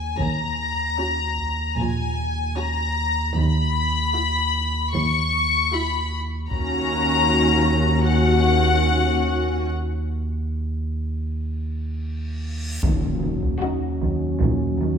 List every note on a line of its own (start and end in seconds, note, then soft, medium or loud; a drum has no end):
0.00 0.16 D#2 soft
0.00 0.17 G#5 soft
0.20 0.83 D#2 soft
0.20 6.48 D#2 soft
0.20 1.78 A#5 medium
0.20 taiko soft
1.00 1.58 C#4 soft
1.00 1.59 F#4 soft
1.38 taiko soft
1.78 2.41 A#1 soft
1.78 2.41 A#2 soft
1.78 2.57 G#5 medium
2.57 3.16 C#4 soft
2.57 3.16 F#4 soft
2.57 3.36 A#5 medium
3.36 3.99 D#2 soft
3.36 3.99 D#2 medium
3.36 4.94 B5 medium
4.14 4.74 E4 soft
4.14 4.74 F#4 soft
4.93 5.56 D#2 soft
4.93 5.57 D#2 soft
4.93 5.71 C#6 medium
5.73 6.32 E4 soft
5.73 6.32 F#4 soft
5.73 6.13 B5 medium
6.51 9.63 D#2 soft
6.51 12.79 D#2 medium
6.51 9.63 D#2 soft
6.51 8.05 C#4 soft
6.51 8.05 F#4 soft
6.51 8.05 A#5 medium
6.51 taiko soft
8.09 9.64 C#4 soft
8.09 9.64 F#4 soft
8.09 9.67 F#5 medium
9.67 reverse cymbal soft
12.83 13.46 D#2 soft
12.83 14.98 D#2 medium
12.83 13.47 D#2 soft
12.83 13.07 D#3 soft
12.83 14.98 F#3 soft
12.83 14.98 C#4 soft
12.83 taiko medium
12.83 impact soft
13.22 13.46 D#3 soft
13.43 taiko medium
13.61 14.22 C#4 soft
13.61 13.86 D#4 soft
13.61 14.21 F#4 soft
13.61 14.22 D#5 soft
14.01 14.25 D#3 soft
14.01 taiko soft
14.40 14.98 A#1 soft
14.40 14.98 A#2 soft
14.40 14.65 D#3 soft
14.40 taiko medium
14.80 14.98 D#3 soft